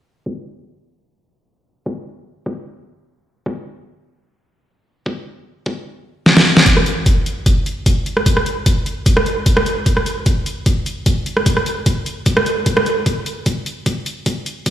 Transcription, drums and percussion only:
0.26 kick
1.86 kick
2.46 kick
3.46 kick
5.06 kick
5.66 kick
6.26 snare
6.37 snare
6.57 snare
6.66 kick, closed hi-hat
6.77 cross-stick
6.86 closed hi-hat
7.06 kick, closed hi-hat
7.26 closed hi-hat
7.46 kick, closed hi-hat
7.66 closed hi-hat
7.86 kick, closed hi-hat
8.06 closed hi-hat
8.17 cross-stick
8.26 kick, closed hi-hat
8.37 cross-stick
8.46 closed hi-hat
8.66 kick, closed hi-hat
8.86 closed hi-hat
9.06 kick, closed hi-hat
9.17 cross-stick
9.26 closed hi-hat
9.46 kick, closed hi-hat
9.57 cross-stick
9.66 closed hi-hat
9.86 kick, closed hi-hat
9.97 cross-stick
10.06 closed hi-hat
10.26 kick, closed hi-hat
10.46 closed hi-hat
10.66 kick, closed hi-hat
10.86 closed hi-hat
11.06 kick, closed hi-hat
11.26 closed hi-hat
11.37 cross-stick
11.46 kick, closed hi-hat
11.57 cross-stick
11.66 closed hi-hat
11.86 kick, closed hi-hat
12.06 closed hi-hat
12.26 kick, closed hi-hat
12.37 cross-stick
12.46 closed hi-hat
12.66 kick, closed hi-hat
12.77 cross-stick
12.86 closed hi-hat
13.06 kick, closed hi-hat
13.26 closed hi-hat
13.46 kick, closed hi-hat
13.66 closed hi-hat
13.86 kick, closed hi-hat
14.06 closed hi-hat
14.26 kick, closed hi-hat
14.46 closed hi-hat
14.66 kick, closed hi-hat

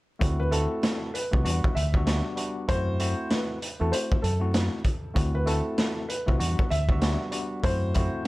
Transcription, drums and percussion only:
0.21 kick, closed hi-hat
0.52 closed hi-hat
0.83 snare, closed hi-hat
1.15 closed hi-hat
1.33 kick
1.46 closed hi-hat
1.64 kick
1.77 closed hi-hat
1.94 kick
2.07 snare, closed hi-hat
2.37 closed hi-hat
2.69 kick, closed hi-hat
3.00 closed hi-hat
3.31 snare, closed hi-hat
3.62 closed hi-hat
3.93 closed hi-hat
4.12 kick
4.24 closed hi-hat
4.54 snare, closed hi-hat
4.85 kick, closed hi-hat
5.16 kick, closed hi-hat
5.47 closed hi-hat
5.78 snare, closed hi-hat
6.10 closed hi-hat
6.28 kick
6.40 closed hi-hat
6.59 kick
6.71 closed hi-hat
6.89 kick
7.02 snare, closed hi-hat
7.32 closed hi-hat
7.63 kick, closed hi-hat
7.94 kick, closed hi-hat

